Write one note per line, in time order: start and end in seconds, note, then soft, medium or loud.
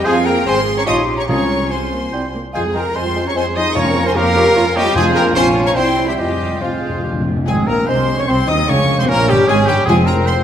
0.04 0.43 F2 loud
0.04 0.19 F3 loud
0.04 0.15 G#3 medium
0.04 0.43 C4 loud
0.04 0.45 F4 loud
0.04 0.19 G#4 loud
0.04 0.15 G#4 loud
0.04 0.14 G#4 loud
0.04 0.43 G#4 loud
0.04 0.19 C5 loud
0.04 0.27 F5 loud
0.04 0.26 G#5 loud
0.25 0.45 A#3 loud
0.25 0.46 A#4 loud
0.25 0.46 G5 loud
0.25 0.46 A#5 loud
0.45 0.87 G#1 loud
0.45 0.59 C4 loud
0.45 0.87 C4 medium
0.45 0.86 G#4 loud
0.45 0.87 G#4 medium
0.45 0.54 C5 loud
0.45 0.60 C5 loud
0.45 0.55 G#5 loud
0.45 0.77 C6 loud
0.77 0.82 C#4 loud
0.77 0.81 C#5 loud
0.77 0.82 C#5 loud
0.77 0.87 A#5 medium
0.77 0.82 C#6 loud
0.86 1.29 A#1 medium
0.86 1.01 F3 medium
0.86 1.28 C#4 medium
0.86 1.02 D#4 loud
0.86 1.01 F4 medium
0.86 1.28 F4 medium
0.86 1.28 G4 medium
0.86 1.01 C#5 medium
0.86 0.94 D#5 loud
0.86 1.02 D#5 loud
0.86 1.16 C6 loud
0.86 0.95 D#6 loud
1.17 1.28 C#4 medium
1.17 1.22 C#5 medium
1.17 1.23 C#5 medium
1.17 1.22 A#5 medium
1.17 1.24 C#6 loud
1.27 2.11 C2 medium
1.27 1.88 C3 loud
1.27 1.43 F3 medium
1.27 1.70 G#3 medium
1.27 1.70 C#4 loud
1.27 2.33 F4 medium
1.27 1.43 F4 medium
1.27 1.71 F4 medium
1.27 1.44 G#4 medium
1.27 1.70 C#5 loud
1.27 1.73 C#5 loud
1.27 1.73 A#5 loud
1.27 1.70 C#6 loud
1.71 1.91 G#3 medium
1.71 2.33 C4 medium
1.71 2.34 C5 medium
1.71 2.34 G#5 medium
1.71 2.34 C6 medium
1.92 2.13 A#3 medium
2.12 2.33 C2 medium
2.12 2.28 G3 medium
2.12 2.21 C4 medium
2.12 2.27 E4 medium
2.12 2.27 C5 medium
2.34 2.42 A#3 medium
2.53 2.91 F2 medium
2.53 2.64 F3 medium
2.53 2.63 G#3 medium
2.53 2.64 F4 medium
2.53 2.93 G#4 medium
2.53 2.74 G#4 loud
2.53 2.64 C5 medium
2.53 2.59 F5 loud
2.53 2.63 G#5 loud
2.65 2.75 G#3 medium
2.65 2.75 G#4 medium
2.74 2.86 F3 medium
2.74 2.84 G#3 medium
2.74 2.84 A#3 medium
2.74 2.86 F4 medium
2.74 2.85 F4 medium
2.74 2.96 A#4 medium
2.74 2.97 A#4 medium
2.74 2.85 C5 medium
2.74 2.81 G5 medium
2.74 2.95 A#5 loud
2.86 2.96 G#3 medium
2.86 2.96 G#4 medium
2.95 3.32 F2 medium
2.95 3.05 F3 medium
2.95 3.05 G#3 medium
2.95 3.25 C4 loud
2.95 3.35 F4 medium
2.95 3.05 F4 medium
2.95 3.05 C5 medium
2.95 3.26 C5 loud
2.95 3.27 C5 medium
2.95 3.03 G#5 medium
2.95 3.27 C6 loud
3.06 3.16 G#3 medium
3.06 3.16 G#4 medium
3.16 3.26 F3 medium
3.16 3.25 G#3 medium
3.16 3.25 F4 medium
3.16 3.26 F4 medium
3.16 3.26 C5 medium
3.25 3.36 G#3 medium
3.25 3.36 C#4 medium
3.25 3.36 G#4 medium
3.25 3.38 C#5 loud
3.25 3.37 C#5 medium
3.25 3.31 A#5 medium
3.25 3.37 C#6 medium
3.35 3.72 F2 medium
3.35 3.45 F3 medium
3.35 3.45 G#3 medium
3.35 3.45 C4 loud
3.35 3.45 F4 medium
3.35 3.75 G#4 medium
3.35 3.44 C5 loud
3.35 3.58 C5 loud
3.35 3.46 C5 medium
3.35 3.43 G#5 loud
3.35 3.45 C6 loud
3.46 3.56 G#3 medium
3.46 3.56 G#4 medium
3.54 3.66 F3 medium
3.54 3.65 G#3 medium
3.54 3.76 D#4 loud
3.54 3.64 F4 medium
3.54 3.67 F4 medium
3.54 3.66 C5 medium
3.54 3.76 D#5 loud
3.54 3.78 D#5 loud
3.54 3.77 C6 loud
3.54 3.77 D#6 loud
3.67 3.77 G#3 medium
3.67 3.77 G#4 medium
3.75 4.32 F2 loud
3.75 4.12 F2 loud
3.75 3.84 F3 medium
3.75 3.86 A#3 medium
3.75 4.07 C#4 medium
3.75 3.84 F4 medium
3.75 3.86 F4 medium
3.75 4.15 A#4 loud
3.75 4.06 C#5 loud
3.75 4.08 C#5 loud
3.75 3.86 C#5 medium
3.75 4.06 A#5 loud
3.75 4.07 C#6 loud
3.86 3.96 C#4 medium
3.86 3.96 A#4 medium
3.95 4.05 F3 medium
3.95 4.06 A#3 medium
3.95 4.04 F4 medium
3.95 4.06 F4 medium
3.95 4.06 C#5 medium
4.06 4.16 C4 loud
4.06 4.16 C#4 medium
4.06 4.16 A#4 medium
4.06 4.16 C5 loud
4.06 4.16 G#5 loud
4.06 4.12 C6 loud
4.15 4.52 F2 loud
4.15 4.25 F3 loud
4.15 4.25 A#3 medium
4.15 4.76 A#3 loud
4.15 4.24 F4 loud
4.15 4.25 F4 medium
4.15 4.56 G4 loud
4.15 4.74 A#4 loud
4.15 4.78 A#4 loud
4.15 4.25 C#5 medium
4.15 4.76 F5 loud
4.15 4.75 A#5 loud
4.25 4.36 C#4 medium
4.25 4.36 A#4 medium
4.34 4.45 F3 medium
4.34 4.46 A#3 medium
4.34 4.44 F4 loud
4.34 4.46 F4 medium
4.34 4.46 C#5 medium
4.46 4.56 C#4 medium
4.46 4.56 A#4 medium
4.56 4.91 F2 loud
4.56 4.65 F3 loud
4.56 4.65 A#3 medium
4.56 4.96 F4 loud
4.56 4.65 F4 medium
4.56 4.66 F4 medium
4.56 4.65 C#5 loud
4.66 4.76 C#4 medium
4.66 4.76 A#4 medium
4.75 4.85 F3 loud
4.75 4.95 G3 loud
4.75 4.86 A#3 medium
4.75 4.84 F4 medium
4.75 4.86 F4 medium
4.75 4.95 G4 loud
4.75 4.85 C#5 loud
4.75 4.96 D#5 loud
4.75 4.96 G5 loud
4.86 4.96 C#4 loud
4.86 4.96 A#4 medium
4.95 5.33 F2 loud
4.95 5.32 F3 loud
4.95 5.15 G#3 loud
4.95 5.32 C4 loud
4.95 5.32 F4 loud
4.95 5.33 F4 loud
4.95 5.35 G#4 loud
4.95 5.05 G#4 loud
4.95 5.16 G#4 loud
4.95 5.36 C5 loud
4.95 5.03 F5 loud
4.95 5.05 G#5 loud
5.15 5.35 A#3 loud
5.15 5.24 A#4 loud
5.15 5.36 A#4 loud
5.15 5.23 G5 loud
5.15 5.24 A#5 loud
5.34 5.75 A#1 loud
5.34 5.75 F3 loud
5.34 5.49 C4 loud
5.34 5.76 C#4 loud
5.34 5.75 F4 loud
5.34 5.77 F4 loud
5.34 5.75 F4 loud
5.34 5.49 C5 loud
5.34 5.45 C5 loud
5.34 5.76 C#5 loud
5.34 5.68 G#5 loud
5.34 5.45 C6 loud
5.64 5.69 C#4 loud
5.64 5.71 C#5 loud
5.64 5.77 C#5 loud
5.64 5.77 A#5 loud
5.64 5.71 C#6 loud
5.74 6.19 C2 medium
5.74 6.20 G3 medium
5.74 6.06 C4 loud
5.74 6.18 C4 medium
5.74 6.19 E4 medium
5.74 6.18 E4 loud
5.74 6.18 E4 medium
5.74 6.17 C5 medium
5.74 5.90 C5 loud
5.74 6.07 C5 loud
5.74 6.07 G5 loud
5.74 6.08 C6 loud
6.06 6.15 G3 medium
6.06 6.13 G4 medium
6.06 6.17 G4 medium
6.06 6.21 E5 medium
6.10 6.14 G5 medium
6.16 7.26 F2 medium
6.16 6.25 F2 soft
6.16 6.60 G3 medium
6.16 6.60 G#3 medium
6.16 6.61 C4 medium
6.16 6.60 F4 medium
6.16 7.23 F4 medium
6.16 6.61 F4 medium
6.16 6.61 G4 medium
6.16 6.64 G4 medium
6.16 6.60 C5 medium
6.16 6.63 D#5 medium
6.16 6.61 G5 medium
6.26 6.34 F2 soft
6.35 6.42 F2 soft
6.43 6.49 F2 medium
6.51 6.58 F2 medium
6.60 6.66 F2 medium
6.60 7.04 F3 medium
6.60 7.24 G#3 medium
6.60 7.25 C4 medium
6.60 6.71 F4 medium
6.60 7.25 F4 medium
6.60 7.05 F4 medium
6.60 7.24 C5 medium
6.60 7.04 C5 medium
6.60 7.05 F5 medium
6.67 6.73 F2 medium
6.74 6.80 F2 medium
6.82 6.88 F2 medium
6.82 7.03 G#4 medium
6.89 6.96 F2 medium
6.97 7.04 F2 medium
7.03 7.11 F2 medium
7.03 7.13 G4 medium
7.13 7.20 F2 medium
7.21 7.28 F2 loud
7.26 7.35 F2 loud
7.26 7.47 F4 medium
7.36 7.44 F2 loud
7.46 7.66 G#1 loud
7.46 8.05 F2 loud
7.46 7.66 G#2 loud
7.46 7.66 G#3 medium
7.46 7.66 G#3 loud
7.46 7.85 C4 medium
7.46 7.54 G#4 medium
7.46 7.66 G#4 medium
7.46 7.68 G#4 medium
7.46 7.66 G#5 medium
7.46 7.56 G#5 loud
7.67 7.76 A#1 medium
7.67 7.76 A#2 medium
7.67 7.87 A#3 loud
7.67 7.88 A#3 medium
7.67 7.89 A#4 medium
7.67 7.90 A#4 loud
7.67 7.88 A#4 medium
7.67 7.87 A#5 medium
7.67 7.88 A#5 medium
7.87 8.18 C2 loud
7.87 8.18 C3 loud
7.87 8.28 G#3 medium
7.87 8.19 C4 loud
7.87 7.96 C4 medium
7.87 8.19 C5 medium
7.87 8.21 C5 loud
7.87 8.18 C5 loud
7.87 8.18 C6 loud
7.87 8.18 C6 medium
8.16 8.22 C#3 loud
8.16 8.28 C#4 medium
8.16 8.23 C#4 medium
8.16 8.27 C#5 medium
8.16 8.23 C#5 medium
8.16 8.31 C#5 medium
8.16 8.29 C#6 medium
8.21 8.30 C#6 medium
8.26 8.49 C2 medium
8.26 8.49 C3 loud
8.26 8.47 C4 loud
8.26 8.70 C4 loud
8.26 8.37 C4 loud
8.26 8.50 C5 medium
8.26 8.48 C5 loud
8.26 8.49 C5 loud
8.26 8.47 C6 loud
8.26 8.49 C6 loud
8.47 8.69 D#2 loud
8.47 8.69 D#3 loud
8.47 8.68 D#4 loud
8.47 8.57 D#4 loud
8.47 8.68 D#5 loud
8.47 8.72 D#5 loud
8.47 8.71 D#5 loud
8.47 8.54 D#6 loud
8.47 8.69 D#6 loud
8.68 8.99 C#2 loud
8.68 9.24 F2 loud
8.68 8.99 C#3 loud
8.68 9.08 A#3 loud
8.68 8.98 C#4 medium
8.68 8.98 C#4 loud
8.68 8.98 C#5 medium
8.68 8.98 C#5 loud
8.68 8.99 C#6 loud
8.68 8.98 C#6 medium
8.98 9.08 C3 loud
8.98 9.09 C4 loud
8.98 9.08 C5 loud
8.98 9.10 C5 loud
8.98 9.09 C5 loud
8.98 9.10 C6 loud
8.98 9.04 C6 loud
9.08 9.29 A#1 loud
9.08 9.28 A#2 loud
9.08 9.28 A#3 loud
9.08 9.47 C#4 loud
9.08 9.28 A#4 loud
9.08 9.31 A#4 loud
9.08 9.31 A#5 loud
9.08 9.29 A#5 loud
9.27 9.48 G1 loud
9.27 9.48 G2 loud
9.27 9.48 G3 loud
9.27 9.48 G4 loud
9.27 9.49 G4 loud
9.27 9.50 G4 loud
9.27 9.48 G5 loud
9.27 9.37 G5 loud
9.47 9.67 G#1 loud
9.47 9.67 G#2 loud
9.47 9.56 G#3 loud
9.47 9.87 C#4 loud
9.47 9.68 G#4 loud
9.47 9.67 G#4 loud
9.47 9.69 G#4 loud
9.47 9.70 G#5 loud
9.47 9.56 G#5 loud
9.66 9.87 G1 loud
9.66 9.87 G2 loud
9.66 9.87 G3 loud
9.66 9.76 G3 loud
9.66 9.85 G4 loud
9.66 9.87 G4 loud
9.66 9.90 G5 loud
9.66 9.76 G5 loud
9.86 10.20 F1 loud
9.86 10.20 F2 loud
9.86 10.43 F2 loud
9.86 10.44 G#3 medium
9.86 10.06 G#3 loud
9.86 10.44 C4 loud
9.86 10.44 F4 medium
9.86 10.06 F4 loud
9.86 9.95 G#4 loud
9.86 10.07 G#4 loud
9.86 10.44 C5 medium
9.86 10.09 G#5 loud
9.86 9.96 G#5 loud
10.05 10.28 A#4 loud
10.05 10.27 A#4 loud
10.05 10.28 A#5 loud
10.05 10.16 A#5 loud
10.26 10.44 C5 loud
10.26 10.44 C6 loud
10.26 10.36 C6 loud